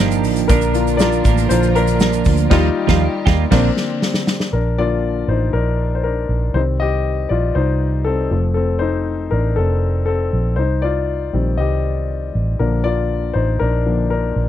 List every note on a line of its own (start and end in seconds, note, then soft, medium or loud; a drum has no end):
0.00 0.25 G1 loud
0.00 0.46 A#2 medium
0.00 0.49 D3 medium
0.00 0.49 F3 medium
0.00 0.45 G3 medium
0.00 0.48 G3 medium
0.00 0.46 A#3 soft
0.00 0.46 A#3 medium
0.00 0.50 A#3 medium
0.00 0.50 D4 medium
0.00 0.21 D#4 medium
0.00 0.46 F4 medium
0.00 0.52 F4 medium
0.00 0.48 G4 medium
0.00 0.48 A#4 medium
0.00 0.51 A#4 medium
0.00 0.52 C5 medium
0.00 0.52 D5 loud
0.11 closed hi-hat soft
0.11 shaker medium
0.24 0.49 A1 medium
0.24 open hi-hat medium
0.24 shaker soft
0.36 closed hi-hat soft
0.36 shaker medium
0.48 1.22 A#1 loud
0.48 1.00 A#2 medium
0.48 2.49 D3 medium
0.48 1.00 D3 medium
0.48 2.49 F3 medium
0.48 0.99 F3 medium
0.48 3.49 A#3 medium
0.48 1.00 A#3 medium
0.48 0.72 D4 medium
0.48 1.00 D4 loud
0.48 4.49 F4 medium
0.48 0.96 A#4 medium
0.48 2.49 A#4 medium
0.48 1.02 A#4 loud
0.48 kick loud
0.48 closed hi-hat medium
0.48 shaker medium
0.61 closed hi-hat soft
0.61 shaker soft
0.73 1.46 A#3 medium
0.73 1.46 D4 medium
0.73 0.98 F4 medium
0.73 closed hi-hat medium
0.73 shaker medium
0.87 closed hi-hat soft
0.87 shaker medium
0.97 1.25 F3 medium
0.97 1.26 A#3 medium
0.97 1.47 F4 medium
0.97 1.46 D5 loud
0.97 snare loud
0.97 shaker medium
1.01 1.25 D4 medium
1.01 1.23 A#4 medium
1.12 closed hi-hat soft
1.12 shaker soft
1.25 1.49 A1 loud
1.25 1.78 F3 soft
1.25 1.77 A#3 medium
1.25 1.75 D4 medium
1.25 1.75 A#4 medium
1.25 kick medium
1.25 closed hi-hat medium
1.25 shaker soft
1.38 closed hi-hat soft
1.38 shaker soft
1.49 2.22 A#1 loud
1.49 1.68 F4 medium
1.49 1.67 C5 medium
1.49 closed hi-hat medium
1.49 shaker medium
1.63 closed hi-hat soft
1.63 shaker soft
1.68 1.76 C5 medium
1.75 1.99 F3 soft
1.75 2.00 A#3 soft
1.75 2.01 D4 medium
1.75 2.23 D4 medium
1.75 2.01 A#4 medium
1.75 2.23 A#4 medium
1.75 closed hi-hat medium
1.87 closed hi-hat medium
1.87 shaker medium
2.00 2.50 F3 medium
2.00 2.51 A#3 medium
2.00 2.51 D4 medium
2.00 2.52 A#4 medium
2.00 snare loud
2.00 shaker medium
2.13 closed hi-hat soft
2.13 shaker medium
2.25 2.50 D2 medium
2.25 kick medium
2.25 open hi-hat medium
2.25 shaker medium
2.37 closed hi-hat soft
2.37 shaker medium
2.50 2.69 D#2 medium
2.50 2.68 D#3 loud
2.50 3.51 D#3 medium
2.50 2.68 F3 loud
2.50 2.68 G3 medium
2.50 3.51 G3 medium
2.50 2.69 A#3 loud
2.50 2.68 D#4 loud
2.50 2.69 F4 loud
2.50 2.69 F4 medium
2.50 3.51 G4 medium
2.50 2.69 G4 loud
2.50 kick loud
2.50 snare loud
2.50 crash medium
2.87 3.06 D#2 medium
2.87 3.05 F3 loud
2.87 3.06 A#3 medium
2.87 3.07 F4 loud
2.87 3.07 G4 medium
2.87 kick loud
2.87 snare loud
3.26 3.44 D#2 loud
3.26 3.45 A#3 medium
3.26 3.44 F4 medium
3.26 3.43 G4 loud
3.26 kick loud
3.26 snare medium
3.51 3.69 A#1 loud
3.51 3.68 A#2 medium
3.51 3.69 D3 medium
3.51 4.52 D3 medium
3.51 3.69 F3 loud
3.51 4.52 F3 medium
3.51 3.69 A#3 medium
3.51 4.52 A#3 medium
3.51 3.69 C4 medium
3.51 4.52 C4 medium
3.51 3.69 C4 medium
3.51 3.70 D4 medium
3.51 3.70 A#4 medium
3.51 kick loud
3.51 snare loud
3.51 crash medium
3.77 snare medium
4.02 snare loud
4.14 snare medium
4.27 snare loud
4.40 snare medium
4.53 5.25 A#1 medium
4.53 4.77 D4 medium
4.53 4.76 A#4 medium
4.78 5.12 D3 soft
4.78 5.12 F3 soft
4.78 5.13 A#3 soft
4.78 5.26 F4 medium
4.78 5.30 D5 loud
5.28 5.52 A1 medium
5.28 5.53 D#4 medium
5.28 5.55 C5 medium
5.53 6.26 A#1 medium
5.53 5.95 D4 medium
5.53 5.94 A#4 medium
5.95 6.03 C5 medium
6.04 6.40 D4 medium
6.04 6.39 A#4 medium
6.29 6.53 A#1 medium
6.54 7.26 C2 medium
6.54 8.27 D#3 soft
6.54 8.27 G3 soft
6.54 8.05 C4 soft
6.54 6.62 D#4 medium
6.54 6.60 C5 medium
6.80 7.28 G4 medium
6.80 7.27 D#5 medium
7.29 7.54 A#1 medium
7.29 7.54 F4 medium
7.29 7.56 D5 medium
7.55 8.28 C2 medium
7.55 8.03 D#4 medium
7.55 8.07 C5 medium
8.05 8.31 C4 medium
8.05 8.40 A4 medium
8.31 9.28 F1 medium
8.31 10.29 F3 soft
8.31 10.29 A3 soft
8.31 8.55 C4 soft
8.54 8.62 C4 medium
8.54 8.60 A4 medium
8.79 9.28 D#4 medium
8.79 9.32 C5 medium
9.31 9.55 A1 medium
9.31 9.38 D4 medium
9.31 9.37 A#4 medium
9.56 10.29 F1 medium
9.56 10.04 C4 medium
9.56 10.04 A4 medium
10.06 10.43 C4 medium
10.06 10.42 A4 medium
10.33 10.58 A#1 medium
10.56 11.30 C2 medium
10.56 10.82 D#4 medium
10.56 10.81 C5 medium
10.82 11.55 F4 medium
10.82 11.61 D5 medium
11.33 11.59 A#1 medium
11.33 12.56 D#3 soft
11.33 12.56 G3 soft
11.33 12.56 C4 soft
11.57 12.31 C2 medium
11.57 12.06 G4 medium
11.57 12.05 D#5 medium
12.35 12.58 A1 medium
12.59 13.32 A#1 medium
12.59 13.85 D3 soft
12.59 13.85 F3 soft
12.59 13.85 A#3 soft
12.59 12.84 D4 medium
12.59 12.86 A#4 medium
12.84 13.32 F4 medium
12.84 13.31 D5 medium
13.34 13.59 A1 medium
13.34 13.59 D#4 medium
13.34 13.61 C5 medium
13.60 14.33 A#1 medium
13.60 14.08 D4 medium
13.60 14.09 A#4 medium
13.86 14.09 D3 soft
13.86 14.09 F3 soft
13.86 14.09 A#3 soft
14.10 14.47 D4 medium
14.10 14.46 A#4 medium
14.36 14.49 A#1 medium